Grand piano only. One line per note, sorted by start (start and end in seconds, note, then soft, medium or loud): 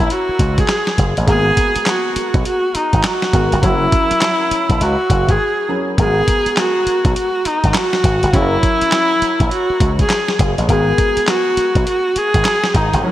0.00 1.23 F#3 medium
0.00 1.23 C#4 medium
0.00 1.24 E4 medium
0.00 1.24 A#4 medium
1.26 3.29 G#3 medium
1.26 1.36 A#3 soft
1.26 3.30 F#4 medium
1.26 3.30 A#4 medium
1.34 3.32 B3 medium
3.33 3.63 G#3 soft
3.33 3.63 B3 soft
3.33 3.63 F#4 soft
3.33 3.63 A#4 medium
3.62 5.64 F#3 medium
3.62 5.65 C#4 medium
3.62 5.65 E4 medium
3.62 5.65 A#4 medium
5.68 5.98 F#3 soft
5.68 5.98 C#4 soft
5.68 5.98 E4 soft
5.68 5.98 A#4 soft
5.97 8.29 G#3 medium
5.97 8.29 B3 medium
5.97 8.30 F#4 medium
5.97 8.30 A#4 medium
8.33 10.64 F#3 medium
8.33 10.65 C#4 medium
8.33 10.65 E4 medium
8.33 8.42 G#4 soft
8.41 10.69 A#4 medium
10.68 13.00 G#3 medium
10.68 13.00 B3 medium
10.68 13.00 F#4 soft
10.68 13.01 A#4 medium
13.03 13.12 F#3 medium
13.03 13.12 C#4 medium
13.03 13.12 E4 medium
13.03 13.12 A#4 medium